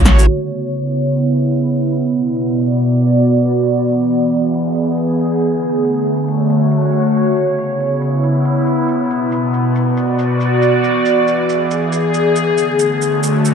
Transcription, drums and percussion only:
0.05 snare, cabasa
0.19 shaker
0.62 shaker
0.84 shaker
1.06 shaker
1.28 shaker
1.50 shaker
1.71 shaker
1.93 shaker
2.14 shaker
2.36 shaker
2.58 shaker
2.80 shaker
3.01 shaker
3.23 shaker
3.45 shaker
3.66 shaker
3.89 shaker
4.10 shaker
4.32 shaker
4.54 shaker
4.75 shaker
4.97 shaker
5.19 shaker
5.41 shaker
5.63 shaker
5.84 shaker
6.06 shaker
6.28 shaker
6.50 shaker
6.71 shaker
6.93 shaker
7.14 shaker
7.37 shaker
7.58 shaker
7.80 shaker
8.02 shaker
8.23 shaker
8.45 shaker
8.67 shaker
8.88 shaker
9.10 shaker
9.32 shaker
9.54 shaker
9.75 shaker
9.97 shaker
10.19 shaker
10.40 shaker
10.62 shaker
10.84 shaker
11.06 shaker
11.28 shaker
11.49 shaker
11.71 shaker
11.93 shaker
12.14 shaker
12.36 shaker
12.58 shaker
12.79 shaker
13.02 shaker
13.23 shaker
13.45 shaker

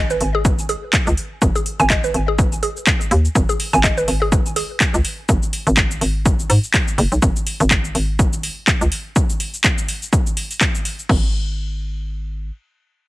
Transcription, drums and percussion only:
0.10 shaker
0.21 open hi-hat
0.45 kick, shaker
0.59 shaker
0.69 open hi-hat
0.93 kick, clap, shaker
1.07 shaker
1.17 open hi-hat
1.42 kick, shaker
1.56 shaker
1.66 open hi-hat
1.80 open hi-hat, shaker
1.90 kick, clap, open hi-hat, shaker
2.04 shaker
2.14 open hi-hat
2.39 kick, shaker
2.52 shaker
2.63 open hi-hat
2.77 shaker
2.87 kick, clap, shaker
3.01 shaker
3.11 open hi-hat
3.25 shaker
3.35 kick, shaker
3.49 shaker
3.60 open hi-hat
3.73 open hi-hat, shaker
3.84 kick, clap, open hi-hat, shaker
3.98 shaker
4.08 open hi-hat
4.32 kick, shaker
4.46 shaker
4.56 open hi-hat
4.80 kick, clap, shaker
4.94 shaker
5.05 open hi-hat
5.29 kick, shaker
5.43 shaker
5.53 open hi-hat
5.67 open hi-hat, shaker
5.77 kick, clap, open hi-hat, shaker
5.91 shaker
6.01 open hi-hat
6.26 kick, shaker
6.39 shaker
6.50 open hi-hat
6.64 shaker
6.74 kick, clap, shaker
6.88 shaker
6.98 open hi-hat
7.12 shaker
7.22 kick, shaker
7.36 shaker
7.47 open hi-hat
7.60 open hi-hat, shaker
7.71 kick, clap, open hi-hat, shaker
7.85 shaker
7.95 open hi-hat
8.19 kick, shaker
8.33 shaker
8.43 open hi-hat
8.68 kick, clap, shaker
8.81 shaker
8.92 open hi-hat
9.16 kick, shaker
9.30 shaker
9.40 open hi-hat
9.54 open hi-hat, shaker
9.64 kick, clap, open hi-hat, shaker
9.78 shaker
9.89 open hi-hat
10.02 shaker
10.13 kick, shaker
10.27 shaker
10.37 open hi-hat
10.51 open hi-hat, shaker
10.61 kick, clap, shaker
10.75 shaker
10.85 open hi-hat
10.99 shaker
11.09 kick, crash

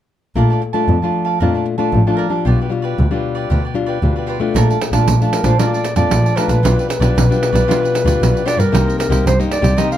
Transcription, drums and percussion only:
4.56 pandeiro
4.71 pandeiro
4.82 pandeiro
4.93 pandeiro
5.08 pandeiro
5.22 pandeiro
5.33 pandeiro
5.44 pandeiro
5.59 pandeiro
5.74 pandeiro
5.85 pandeiro
5.96 pandeiro
6.11 pandeiro
6.26 pandeiro
6.37 pandeiro
6.49 pandeiro
6.65 pandeiro
6.79 pandeiro
6.90 pandeiro
7.02 pandeiro
7.18 pandeiro
7.32 pandeiro
7.43 pandeiro
7.55 pandeiro
7.71 pandeiro
7.85 pandeiro
7.95 pandeiro
8.07 pandeiro
8.23 pandeiro
8.37 pandeiro
8.48 pandeiro
8.60 pandeiro
8.75 pandeiro
8.89 pandeiro
9.00 pandeiro
9.12 pandeiro
9.27 pandeiro
9.40 pandeiro
9.52 pandeiro
9.64 pandeiro
9.78 pandeiro
9.92 pandeiro

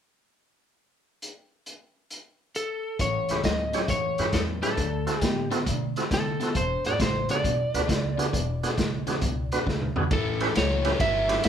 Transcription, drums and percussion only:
1.22 closed hi-hat
1.66 closed hi-hat
2.10 closed hi-hat
2.55 closed hi-hat
2.99 kick, closed hi-hat
3.29 snare, closed hi-hat
3.44 kick, snare, closed hi-hat
3.73 snare, closed hi-hat
3.88 kick, closed hi-hat
4.18 snare, closed hi-hat
4.33 kick, snare, closed hi-hat
4.63 snare, closed hi-hat
4.77 kick, closed hi-hat
5.07 snare, closed hi-hat
5.21 kick, snare, closed hi-hat
5.51 snare, closed hi-hat
5.66 kick, closed hi-hat
5.96 snare, closed hi-hat
6.11 kick, snare, closed hi-hat
6.41 snare, closed hi-hat
6.55 kick, closed hi-hat
6.85 snare, closed hi-hat
7.00 kick, snare, closed hi-hat
7.29 snare, closed hi-hat
7.44 kick, closed hi-hat
7.74 snare, closed hi-hat
7.89 kick, snare, closed hi-hat
8.19 snare, closed hi-hat
8.33 kick, closed hi-hat
8.63 snare, closed hi-hat
8.78 kick, snare, closed hi-hat
9.07 snare, closed hi-hat
9.21 kick, closed hi-hat
9.52 snare, closed hi-hat
9.67 kick, snare
9.82 mid tom
9.96 floor tom
10.11 kick, ride
10.40 snare, ride
10.55 snare, ride
10.85 snare, ride
11.00 kick, ride
11.29 snare, ride
11.44 snare, ride

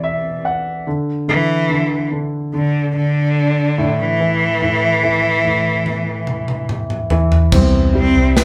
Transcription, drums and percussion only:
5.86 high tom
6.27 mid tom
6.48 mid tom
6.69 mid tom
6.90 mid tom
7.10 floor tom
7.32 floor tom
7.52 kick, floor tom, crash
8.37 snare

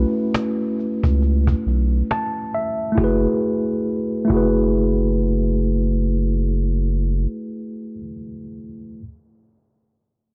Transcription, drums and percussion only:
0.34 cajon slap
0.79 cajon slap
1.03 cajon bass
1.22 cajon slap
1.47 cajon bass
1.68 cajon slap
2.11 cajon slap
2.59 cajon slap
2.98 cajon bass
4.30 cajon bass

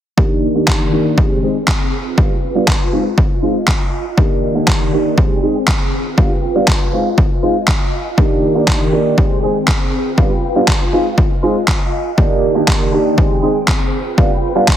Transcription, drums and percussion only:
0.18 kick
0.68 kick, clap
1.18 kick
1.68 kick, clap
2.18 kick
2.68 kick, clap
3.18 kick
3.68 kick, clap
4.18 kick
4.68 kick, clap
5.18 kick
5.68 kick, clap
6.18 kick
6.68 kick, clap
7.18 kick
7.68 kick, clap
8.18 kick
8.68 kick, clap
9.18 kick
9.68 kick, clap
10.18 kick
10.68 kick, clap
11.18 kick
11.68 kick, clap
12.18 kick
12.68 kick, clap
13.18 kick
13.68 kick, clap
14.18 kick
14.68 kick, clap

